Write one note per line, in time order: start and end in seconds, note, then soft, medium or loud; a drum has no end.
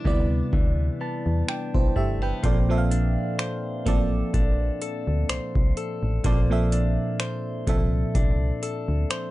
0.00 0.04 C3 medium
0.00 2.44 C3 medium
0.00 0.52 E3 medium
0.00 0.05 G3 medium
0.00 0.06 B3 medium
0.00 1.47 D4 medium
0.00 0.06 E4 medium
0.00 0.07 D5 medium
0.04 0.42 D2 medium
0.04 1.86 C3 medium
0.04 1.86 G3 medium
0.04 1.00 B3 medium
0.04 1.86 B3 medium
0.04 1.01 E4 medium
0.04 1.02 D5 medium
0.04 kick medium
0.53 0.90 D2 loud
0.53 2.43 E3 medium
0.53 kick loud
1.01 1.95 B3 medium
1.01 1.45 A5 medium
1.26 1.43 E2 medium
1.48 2.91 D4 medium
1.48 1.93 G5 medium
1.48 finger snap loud
1.75 1.91 B1 medium
1.75 1.95 E4 medium
1.75 1.95 C5 medium
1.75 kick medium
1.96 2.33 G1 medium
1.96 2.22 A3 medium
1.96 2.21 G4 medium
1.96 2.41 E5 medium
1.96 kick medium
2.22 2.54 B3 soft
2.22 2.68 B4 medium
2.22 2.67 G5 medium
2.43 3.17 A#1 loud
2.43 2.68 A#2 medium
2.43 2.68 F3 medium
2.43 6.24 A#3 medium
2.43 2.68 C4 medium
2.43 2.69 A4 medium
2.43 3.38 C5 medium
2.43 2.69 D5 medium
2.43 kick loud
2.43 closed hi-hat medium
2.69 3.80 A#2 medium
2.69 3.80 F3 medium
2.69 3.81 C4 medium
2.69 3.81 A4 medium
2.69 2.76 E5 medium
2.78 3.85 F5 medium
2.91 4.33 D4 medium
2.91 closed hi-hat medium
3.39 5.29 C5 medium
3.39 finger snap loud
3.39 closed hi-hat medium
3.86 4.23 A1 medium
3.86 5.67 F3 medium
3.86 5.67 A#3 medium
3.86 5.67 C4 medium
3.86 4.80 A4 medium
3.86 5.68 A4 medium
3.86 5.68 D5 medium
3.86 kick medium
3.86 closed hi-hat medium
4.34 4.71 A#1 loud
4.34 6.72 D4 medium
4.34 kick loud
4.34 closed hi-hat medium
4.82 5.76 A4 medium
4.82 closed hi-hat medium
5.07 5.24 D2 medium
5.29 5.40 C2 soft
5.29 6.25 C5 medium
5.29 finger snap loud
5.29 closed hi-hat medium
5.55 5.72 C2 medium
5.55 kick medium
5.77 7.66 A4 medium
5.77 closed hi-hat medium
6.03 6.20 A1 medium
6.24 6.98 A#1 loud
6.24 6.49 A#2 medium
6.24 6.49 F3 medium
6.24 9.31 A#3 medium
6.24 6.49 C4 medium
6.24 6.49 A4 medium
6.24 7.19 C5 medium
6.24 6.50 D5 medium
6.24 kick loud
6.24 closed hi-hat medium
6.50 7.61 A#2 medium
6.50 7.61 F3 medium
6.50 7.62 C4 medium
6.50 7.62 A4 medium
6.50 7.62 E5 medium
6.72 8.15 D4 medium
6.72 closed hi-hat medium
7.20 9.10 C5 medium
7.20 finger snap loud
7.20 closed hi-hat medium
7.67 8.04 C2 loud
7.67 9.31 A#2 medium
7.67 9.31 F3 medium
7.67 9.31 C4 medium
7.67 8.62 A4 medium
7.67 9.31 A4 medium
7.67 9.31 E5 medium
7.67 kick medium
7.67 closed hi-hat medium
8.15 8.52 C2 loud
8.15 9.31 D4 medium
8.15 kick loud
8.15 closed hi-hat medium
8.63 9.31 A4 medium
8.63 closed hi-hat medium
8.88 9.05 D2 medium
9.10 9.31 C5 medium
9.10 finger snap loud
9.10 closed hi-hat medium